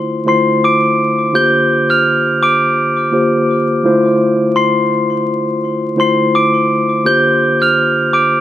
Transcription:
0.00 0.25 D3 medium
0.00 0.25 A3 medium
0.00 0.26 E4 loud
0.00 0.26 F4 medium
0.00 0.27 C5 loud
0.25 1.25 D3 medium
0.25 1.25 A3 medium
0.25 1.25 E4 medium
0.25 1.26 F4 medium
0.25 1.26 C5 medium
0.25 0.45 C6 medium
0.29 0.46 C7 medium
0.64 0.96 D6 medium
0.64 0.96 D7 medium
1.33 2.65 D3 medium
1.33 2.66 A#3 medium
1.33 2.66 F4 medium
1.33 2.66 G4 medium
1.33 2.67 C5 medium
1.33 1.87 G6 medium
1.33 1.87 G7 medium
1.90 2.39 F6 medium
1.90 2.39 F7 medium
2.43 3.65 D6 medium
2.43 3.65 D7 medium
3.11 3.82 D3 medium
3.11 3.84 A#3 medium
3.11 3.84 F4 medium
3.11 3.85 G4 medium
3.11 3.85 C5 medium
3.84 5.16 D3 medium
3.84 5.16 A3 medium
3.84 5.16 E4 medium
3.84 5.17 F4 medium
3.84 5.17 C5 loud
4.56 5.08 C6 medium
4.56 5.08 C7 medium
5.96 6.96 D3 medium
5.96 6.96 A3 medium
5.96 6.97 E4 medium
5.96 6.97 F4 medium
5.96 6.97 C5 medium
5.96 6.17 C6 medium
6.01 6.18 C7 medium
6.35 6.67 D6 medium
6.35 6.68 D7 medium
7.04 8.37 D3 medium
7.04 8.37 A#3 medium
7.04 8.37 F4 medium
7.04 8.38 G4 medium
7.04 8.38 C5 medium
7.04 7.58 G6 medium
7.04 7.59 G7 medium
7.62 8.10 F6 medium
7.62 8.11 F7 medium
8.13 8.41 D6 medium
8.13 8.41 D7 medium

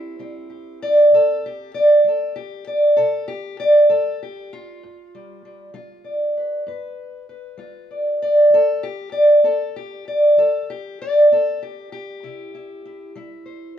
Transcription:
0.00 0.18 C4 medium
0.00 1.13 E4 soft
0.00 0.49 G4 medium
0.19 0.75 G3 medium
0.19 4.51 C4 medium
0.50 0.82 G4 soft
0.82 1.12 D5 loud
1.11 1.67 C3 medium
1.11 1.44 A4 loud
1.46 1.74 G4 medium
1.74 2.04 D5 loud
2.04 2.59 G3 medium
2.04 2.37 A4 medium
2.36 2.66 G4 loud
2.67 2.97 D5 medium
2.96 3.52 C3 medium
2.96 3.27 A4 loud
3.28 3.58 G4 loud
3.60 3.90 D5 loud
3.89 4.45 G3 medium
3.89 4.20 A4 loud
4.23 4.52 G4 medium
4.53 5.73 F4 medium
4.83 5.38 G2 medium
5.15 5.44 G3 soft
5.45 5.73 G3 soft
5.74 6.29 G3 medium
5.74 7.58 F4 medium
6.04 7.89 D5 medium
6.37 6.67 B4 soft
6.67 7.22 G2 medium
6.67 7.28 B4 medium
7.29 8.48 B4 soft
7.57 8.14 G3 medium
7.57 8.48 F4 soft
7.91 8.21 D5 medium
8.22 8.52 D5 loud
8.50 9.06 F3 medium
8.50 8.84 A4 loud
8.83 9.12 G4 loud
9.12 9.44 D5 loud
9.44 9.99 C4 medium
9.44 9.75 A4 medium
9.76 10.06 G4 loud
10.08 10.38 D5 medium
10.37 10.92 F3 medium
10.37 10.68 A4 medium
10.70 11.00 G4 loud
11.02 11.31 D5 loud
11.32 11.86 C4 medium
11.32 11.62 A4 loud
11.62 11.91 G4 medium
11.92 13.15 G4 loud
12.23 12.78 C3 medium
12.23 12.53 E4 medium
12.55 12.84 E4 soft
12.85 13.15 E4 soft
13.15 13.71 G3 medium
13.15 13.79 E4 medium
13.46 13.76 C5 soft

